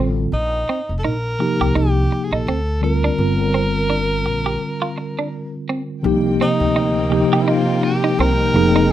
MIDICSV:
0, 0, Header, 1, 7, 480
1, 0, Start_track
1, 0, Key_signature, -3, "minor"
1, 0, Tempo, 714286
1, 210, Time_signature, 4, 2, 24, 8
1, 5998, End_track
2, 0, Start_track
2, 0, Title_t, "Tenor saxophone"
2, 0, Program_c, 0, 66
2, 224, Note_on_c, 0, 63, 97
2, 630, Note_off_c, 0, 63, 0
2, 665, Note_on_c, 0, 69, 67
2, 702, Note_on_c, 0, 70, 99
2, 713, Note_off_c, 0, 69, 0
2, 1187, Note_on_c, 0, 67, 91
2, 1198, Note_off_c, 0, 70, 0
2, 1507, Note_on_c, 0, 68, 63
2, 1517, Note_off_c, 0, 67, 0
2, 1568, Note_on_c, 0, 69, 91
2, 1578, Note_off_c, 0, 68, 0
2, 1900, Note_off_c, 0, 69, 0
2, 1907, Note_on_c, 0, 70, 92
2, 3792, Note_off_c, 0, 70, 0
2, 4314, Note_on_c, 0, 63, 94
2, 4983, Note_on_c, 0, 64, 67
2, 4993, Note_off_c, 0, 63, 0
2, 5029, Note_on_c, 0, 65, 93
2, 5039, Note_off_c, 0, 64, 0
2, 5267, Note_on_c, 0, 67, 93
2, 5277, Note_off_c, 0, 65, 0
2, 5508, Note_on_c, 0, 70, 113
2, 5518, Note_off_c, 0, 67, 0
2, 5996, Note_off_c, 0, 70, 0
2, 5998, End_track
3, 0, Start_track
3, 0, Title_t, "Clean electric guitar"
3, 0, Program_c, 1, 27
3, 465, Note_on_c, 1, 60, 63
3, 539, Note_off_c, 1, 60, 0
3, 702, Note_on_c, 1, 63, 74
3, 777, Note_off_c, 1, 63, 0
3, 1082, Note_on_c, 1, 67, 70
3, 1137, Note_off_c, 1, 67, 0
3, 1179, Note_on_c, 1, 63, 74
3, 1255, Note_off_c, 1, 63, 0
3, 1563, Note_on_c, 1, 63, 65
3, 1617, Note_off_c, 1, 63, 0
3, 1670, Note_on_c, 1, 60, 71
3, 1742, Note_off_c, 1, 60, 0
3, 2044, Note_on_c, 1, 62, 71
3, 2098, Note_off_c, 1, 62, 0
3, 2380, Note_on_c, 1, 60, 60
3, 2456, Note_off_c, 1, 60, 0
3, 2619, Note_on_c, 1, 62, 69
3, 2695, Note_off_c, 1, 62, 0
3, 2997, Note_on_c, 1, 67, 63
3, 3053, Note_off_c, 1, 67, 0
3, 3238, Note_on_c, 1, 65, 64
3, 3293, Note_off_c, 1, 65, 0
3, 3485, Note_on_c, 1, 62, 59
3, 3539, Note_off_c, 1, 62, 0
3, 3826, Note_on_c, 1, 60, 69
3, 3900, Note_off_c, 1, 60, 0
3, 4309, Note_on_c, 1, 60, 64
3, 4382, Note_off_c, 1, 60, 0
3, 4543, Note_on_c, 1, 63, 74
3, 4618, Note_off_c, 1, 63, 0
3, 4925, Note_on_c, 1, 67, 81
3, 4979, Note_off_c, 1, 67, 0
3, 5025, Note_on_c, 1, 63, 76
3, 5099, Note_off_c, 1, 63, 0
3, 5402, Note_on_c, 1, 63, 77
3, 5457, Note_off_c, 1, 63, 0
3, 5513, Note_on_c, 1, 60, 76
3, 5585, Note_off_c, 1, 60, 0
3, 5885, Note_on_c, 1, 63, 76
3, 5939, Note_off_c, 1, 63, 0
3, 5998, End_track
4, 0, Start_track
4, 0, Title_t, "String section"
4, 0, Program_c, 2, 48
4, 4053, Note_on_c, 2, 79, 88
4, 4054, Note_on_c, 2, 60, 68
4, 4056, Note_on_c, 2, 58, 69
4, 4056, Note_on_c, 2, 63, 71
4, 5715, Note_off_c, 2, 60, 0
4, 5716, Note_off_c, 2, 58, 0
4, 5716, Note_off_c, 2, 63, 0
4, 5736, Note_on_c, 2, 56, 73
4, 5737, Note_on_c, 2, 53, 75
4, 5737, Note_on_c, 2, 63, 73
4, 5998, Note_off_c, 2, 53, 0
4, 5998, Note_off_c, 2, 56, 0
4, 5998, Note_off_c, 2, 63, 0
4, 5998, Note_off_c, 2, 79, 0
4, 5998, End_track
5, 0, Start_track
5, 0, Title_t, "Tine electric piano"
5, 0, Program_c, 3, 4
5, 0, Control_c, 3, 64, 127
5, 0, Note_on_c, 3, 50, 72
5, 0, Note_on_c, 3, 55, 62
5, 0, Note_on_c, 3, 60, 65
5, 0, Note_on_c, 3, 65, 68
5, 0, Note_on_c, 3, 69, 82
5, 171, Note_off_c, 3, 50, 0
5, 173, Note_off_c, 3, 55, 0
5, 177, Note_off_c, 3, 60, 0
5, 178, Note_off_c, 3, 65, 0
5, 181, Note_off_c, 3, 69, 0
5, 218, Control_c, 3, 64, 0
5, 335, Control_c, 3, 64, 127
5, 933, Note_on_c, 3, 48, 64
5, 939, Note_on_c, 3, 53, 61
5, 943, Note_on_c, 3, 58, 61
5, 946, Note_on_c, 3, 63, 60
5, 953, Note_on_c, 3, 67, 73
5, 1610, Note_off_c, 3, 48, 0
5, 1613, Note_off_c, 3, 53, 0
5, 1615, Note_off_c, 3, 58, 0
5, 1617, Note_off_c, 3, 63, 0
5, 1621, Note_off_c, 3, 67, 0
5, 1660, Control_c, 3, 64, 0
5, 1769, Control_c, 3, 64, 127
5, 1889, Note_on_c, 3, 50, 61
5, 1894, Note_on_c, 3, 55, 53
5, 1900, Note_on_c, 3, 60, 53
5, 1903, Note_on_c, 3, 65, 54
5, 1909, Note_on_c, 3, 70, 63
5, 2124, Note_off_c, 3, 50, 0
5, 2128, Note_off_c, 3, 55, 0
5, 2132, Note_on_c, 3, 50, 55
5, 2134, Note_off_c, 3, 60, 0
5, 2136, Note_on_c, 3, 55, 50
5, 2138, Note_off_c, 3, 65, 0
5, 2139, Control_c, 3, 64, 0
5, 2142, Note_on_c, 3, 60, 50
5, 2144, Note_off_c, 3, 70, 0
5, 2146, Note_on_c, 3, 65, 51
5, 2152, Note_on_c, 3, 70, 61
5, 2270, Control_c, 3, 64, 127
5, 2481, Note_off_c, 3, 50, 0
5, 2483, Note_off_c, 3, 55, 0
5, 2486, Note_off_c, 3, 60, 0
5, 2488, Note_off_c, 3, 65, 0
5, 2491, Note_off_c, 3, 70, 0
5, 4051, Note_on_c, 3, 48, 79
5, 4056, Note_on_c, 3, 53, 69
5, 4060, Control_c, 3, 64, 0
5, 4062, Note_on_c, 3, 58, 72
5, 4067, Note_on_c, 3, 63, 67
5, 4072, Note_on_c, 3, 67, 89
5, 4180, Control_c, 3, 64, 127
5, 4730, Note_off_c, 3, 48, 0
5, 4732, Note_off_c, 3, 53, 0
5, 4735, Note_off_c, 3, 58, 0
5, 4737, Note_off_c, 3, 63, 0
5, 4740, Note_off_c, 3, 67, 0
5, 4770, Note_on_c, 3, 48, 70
5, 4775, Note_on_c, 3, 53, 61
5, 4781, Note_on_c, 3, 58, 62
5, 4785, Note_on_c, 3, 63, 61
5, 4788, Note_on_c, 3, 67, 77
5, 4948, Note_off_c, 3, 48, 0
5, 4951, Note_off_c, 3, 53, 0
5, 4954, Note_off_c, 3, 58, 0
5, 4956, Note_off_c, 3, 63, 0
5, 4958, Note_off_c, 3, 67, 0
5, 5736, Note_on_c, 3, 48, 79
5, 5740, Control_c, 3, 64, 0
5, 5740, Note_on_c, 3, 53, 74
5, 5744, Note_on_c, 3, 58, 72
5, 5748, Note_on_c, 3, 63, 74
5, 5754, Note_on_c, 3, 68, 82
5, 5849, Control_c, 3, 64, 127
5, 5998, Note_off_c, 3, 48, 0
5, 5998, Note_off_c, 3, 53, 0
5, 5998, Note_off_c, 3, 58, 0
5, 5998, Note_off_c, 3, 63, 0
5, 5998, Note_off_c, 3, 68, 0
5, 5998, End_track
6, 0, Start_track
6, 0, Title_t, "Upright bass"
6, 0, Program_c, 4, 32
6, 0, Note_on_c, 4, 33, 77
6, 182, Note_off_c, 4, 33, 0
6, 215, Note_on_c, 4, 34, 85
6, 420, Note_off_c, 4, 34, 0
6, 600, Note_on_c, 4, 29, 74
6, 683, Note_off_c, 4, 29, 0
6, 700, Note_on_c, 4, 34, 84
6, 903, Note_off_c, 4, 34, 0
6, 1079, Note_on_c, 4, 36, 74
6, 1162, Note_off_c, 4, 36, 0
6, 1181, Note_on_c, 4, 36, 89
6, 1383, Note_off_c, 4, 36, 0
6, 1555, Note_on_c, 4, 34, 82
6, 1640, Note_off_c, 4, 34, 0
6, 1665, Note_on_c, 4, 38, 90
6, 2072, Note_off_c, 4, 38, 0
6, 2139, Note_on_c, 4, 31, 93
6, 2861, Note_off_c, 4, 31, 0
6, 2861, Note_on_c, 4, 34, 76
6, 3063, Note_off_c, 4, 34, 0
6, 4060, Note_on_c, 4, 36, 97
6, 4263, Note_off_c, 4, 36, 0
6, 4435, Note_on_c, 4, 38, 85
6, 4845, Note_off_c, 4, 38, 0
6, 5500, Note_on_c, 4, 36, 87
6, 5703, Note_off_c, 4, 36, 0
6, 5737, Note_on_c, 4, 29, 91
6, 5998, Note_off_c, 4, 29, 0
6, 5998, End_track
7, 0, Start_track
7, 0, Title_t, "Muted clean electric guitar strokes"
7, 943, Note_on_c, 9, 29, 38
7, 1010, Note_off_c, 9, 29, 0
7, 1427, Note_on_c, 9, 29, 38
7, 1494, Note_off_c, 9, 29, 0
7, 1902, Note_on_c, 9, 29, 41
7, 1969, Note_off_c, 9, 29, 0
7, 2861, Note_on_c, 9, 29, 37
7, 2928, Note_off_c, 9, 29, 0
7, 3344, Note_on_c, 9, 29, 39
7, 3411, Note_off_c, 9, 29, 0
7, 4784, Note_on_c, 9, 29, 42
7, 4851, Note_off_c, 9, 29, 0
7, 5263, Note_on_c, 9, 29, 43
7, 5331, Note_off_c, 9, 29, 0
7, 5751, Note_on_c, 9, 29, 44
7, 5818, Note_off_c, 9, 29, 0
7, 5998, End_track
0, 0, End_of_file